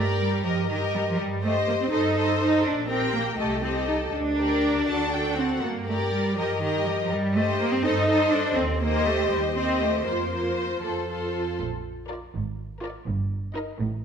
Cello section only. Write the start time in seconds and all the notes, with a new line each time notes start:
0.20 G3
0.44 F3
0.69 D#3
0.94 G3
1.08 F3
1.19 G3
1.44 A3
1.68 A#3
1.81 C4
1.92 D#4
2.40 D#4
2.64 D4
2.89 C4
3.14 A#3
3.38 A3
3.63 C4
3.88 D#4
4.13 D4
5.38 C4
5.64 A#3
5.89 A3
6.13 G3
6.38 F3
6.62 D#3
6.86 G3
6.99 F3
7.11 G3
7.36 A3
7.61 A#3
7.74 C4
7.85 D#4
8.33 D4
8.58 C4
8.83 A#3
9.07 A3
9.32 G3
9.57 C4
9.82 A3
10.07 A#3
11.60 A#2
12.35 G#2
13.07 G2
13.79 A2